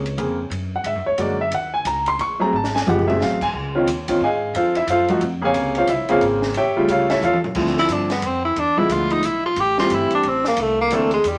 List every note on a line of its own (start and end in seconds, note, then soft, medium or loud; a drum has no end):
0.00 0.17 C#2 medium
0.00 0.49 C#5 medium
0.06 ride soft
0.17 0.49 F2 medium
0.17 0.37 C#3 medium
0.17 0.37 A#3 soft
0.17 0.37 C4 soft
0.17 0.37 G#4 medium
0.17 ride medium
0.50 0.83 F#2 medium
0.50 ride medium
0.76 0.86 F#5 medium
0.84 0.95 G#2 medium
0.84 1.06 E5 medium
0.84 ride medium
0.95 1.06 F#2 soft
1.06 1.17 D2 medium
1.06 1.19 C#5 medium
1.18 1.50 F#2 medium
1.18 1.37 D3 medium
1.18 1.38 G#3 medium
1.18 1.37 A#3 medium
1.18 1.37 F#4 medium
1.18 1.40 D5 medium
1.18 hi-hat pedal medium
1.18 ride medium
1.41 1.53 E5 medium
1.51 1.84 D#2 medium
1.51 1.74 F#5 medium
1.51 ride medium
1.74 1.86 G#5 medium
1.85 2.18 C#2 medium
1.85 2.07 A#5 medium
1.85 hi-hat pedal medium
1.85 ride medium
2.06 2.20 C6 loud
2.06 ride soft
2.19 2.52 A#1 medium
2.19 2.41 C#6 loud
2.19 ride medium
2.39 2.51 F#3 medium
2.39 2.52 A3 medium
2.39 2.52 C4 medium
2.39 2.52 G#4 medium
2.39 2.53 A#5 medium
2.53 2.85 G#1 medium
2.53 2.75 A5 medium
2.64 snare medium
2.75 2.87 G#5 medium
2.75 snare medium
2.86 3.19 F#1 medium
2.86 3.06 F3 medium
2.86 3.06 G#3 medium
2.86 3.06 B3 medium
2.86 3.06 G4 medium
2.86 3.08 F#5 medium
2.86 hi-hat pedal soft
2.86 mid tom medium
2.99 floor tom medium
3.07 3.37 F#3 medium
3.07 3.37 A3 medium
3.07 3.37 C4 medium
3.07 3.37 G#4 medium
3.07 3.20 E5 medium
3.07 floor tom medium
3.20 3.53 A1 medium
3.20 3.41 F5 medium
3.20 snare medium
3.41 3.50 G#5 medium
3.41 kick medium
3.41 crash medium
3.53 3.86 C#2 medium
3.75 3.86 D#3 medium
3.75 3.86 C4 medium
3.75 3.86 C#4 medium
3.75 3.86 F4 medium
3.87 4.19 D#2 medium
3.87 hi-hat pedal medium
3.87 ride medium
4.08 4.20 D#3 medium
4.08 4.20 C4 medium
4.08 4.20 C#4 medium
4.08 4.20 F4 medium
4.08 kick medium
4.08 ride medium
4.21 4.53 G#2 medium
4.21 4.54 G#4 medium
4.21 4.54 D#5 medium
4.21 4.54 F5 medium
4.21 4.53 G#5 medium
4.54 4.86 F2 medium
4.54 4.76 F4 medium
4.54 4.76 A4 medium
4.54 4.76 C5 medium
4.54 4.75 F5 medium
4.54 ride medium
4.75 4.88 E4 medium
4.75 4.88 E5 medium
4.75 ride medium
4.87 5.20 F#2 medium
4.87 5.10 F4 medium
4.87 5.10 A4 medium
4.87 5.09 C5 medium
4.87 5.09 F5 medium
4.87 hi-hat pedal medium
4.87 ride medium
5.08 5.20 F3 medium
5.08 5.21 A3 medium
5.08 5.21 D#4 medium
5.08 5.21 F#4 medium
5.08 ride soft
5.21 5.53 F2 medium
5.21 ride medium
5.42 5.86 C3 medium
5.42 5.85 C#3 medium
5.42 5.85 A#3 medium
5.42 5.44 G#4 medium
5.42 5.75 G#4 medium
5.42 5.75 C#5 medium
5.42 5.75 F5 medium
5.42 5.75 G#5 medium
5.54 5.87 C#2 medium
5.54 ride medium
5.75 5.89 F4 medium
5.75 5.89 C5 medium
5.75 5.89 C#5 medium
5.75 5.89 F5 medium
5.75 ride medium
5.87 5.99 C2 medium
5.87 6.10 E4 medium
5.87 6.09 E5 medium
5.87 hi-hat pedal medium
5.87 ride medium
5.99 6.09 A#1 medium
6.09 6.20 G#1 medium
6.09 6.53 C#3 medium
6.09 6.53 A#3 medium
6.09 6.53 C4 medium
6.09 6.22 F4 medium
6.09 6.53 G#4 medium
6.09 6.22 C5 medium
6.09 6.23 C#5 medium
6.09 6.22 F5 medium
6.09 ride soft
6.21 6.54 G#1 medium
6.21 ride medium
6.42 snare medium
6.54 6.74 A1 medium
6.54 6.88 G4 medium
6.54 6.87 C#5 medium
6.54 6.88 E5 medium
6.54 6.88 G5 loud
6.54 ride medium
6.75 7.20 C#3 medium
6.75 7.20 G3 medium
6.75 7.20 A3 medium
6.75 6.90 F4 medium
6.75 muted upright bass stroke soft
6.88 7.20 C#2 medium
6.88 7.10 F4 medium
6.88 7.09 A4 medium
6.88 7.10 C#5 medium
6.88 7.10 F5 medium
6.88 hi-hat pedal medium
6.88 ride medium
7.10 7.22 E4 medium
7.10 7.22 A4 medium
7.10 7.23 C#5 medium
7.10 7.22 E5 medium
7.10 snare medium
7.10 ride soft
7.21 7.54 E2 medium
7.21 7.36 F4 medium
7.21 7.37 C#5 medium
7.21 7.36 F5 medium
7.21 hi-hat pedal medium
7.21 mid tom soft
7.25 7.37 A4 medium
7.34 mid tom medium
7.44 floor tom medium
7.55 7.88 D2 medium
7.55 8.06 D3 medium
7.55 8.06 F3 medium
7.55 8.06 A3 medium
7.55 8.06 C4 medium
7.55 8.06 E4 medium
7.55 kick medium
7.55 crash medium
7.67 snare soft
7.78 7.94 E4 medium
7.78 snare soft
7.88 8.21 G2 medium
7.88 hi-hat pedal medium
7.88 ride medium
7.92 8.11 D4 medium
8.10 8.28 B3 medium
8.10 snare soft
8.10 ride soft
8.22 8.55 F2 medium
8.22 ride medium
8.26 8.44 C4 medium
8.45 8.61 E4 medium
8.56 8.88 E2 medium
8.56 8.80 D4 medium
8.56 ride medium
8.77 9.21 D3 medium
8.77 9.21 F3 medium
8.77 9.21 G#3 medium
8.77 9.21 B3 medium
8.77 9.21 E4 medium
8.77 8.94 E4 medium
8.89 9.22 D2 medium
8.89 9.13 F4 medium
8.89 hi-hat pedal medium
8.89 ride medium
9.10 9.27 D#4 medium
9.10 ride soft
9.23 9.56 B1 medium
9.23 9.45 E4 medium
9.23 hi-hat pedal medium
9.23 ride medium
9.46 9.61 F4 medium
9.56 9.89 A1 medium
9.56 9.79 G4 loud
9.56 ride medium
9.78 10.22 E3 medium
9.78 10.22 G3 medium
9.78 10.22 A3 medium
9.78 10.22 C4 medium
9.78 9.96 F4 medium
9.78 10.22 G4 medium
9.78 snare medium
9.89 10.09 G1 medium
9.89 hi-hat pedal soft
9.89 ride medium
9.95 10.13 E4 medium
10.10 muted upright bass stroke soft
10.10 ride soft
10.15 10.30 D4 medium
10.23 10.56 A1 medium
10.23 ride medium
10.28 10.47 C4 medium
10.45 10.62 A#3 medium
10.45 snare medium
10.57 10.90 C2 medium
10.57 ride medium
10.61 10.80 A3 medium
10.81 10.96 A#3 medium
10.90 11.24 D2 medium
10.90 11.10 E3 medium
10.90 11.10 A#3 medium
10.90 11.10 C4 medium
10.90 11.11 D4 medium
10.90 11.11 A4 medium
10.90 hi-hat pedal medium
10.90 ride medium
10.94 11.13 A3 medium
11.11 11.30 G#3 medium
11.11 ride soft
11.24 11.38 E2 medium
11.24 hi-hat pedal medium
11.24 ride medium
11.28 11.38 G3 medium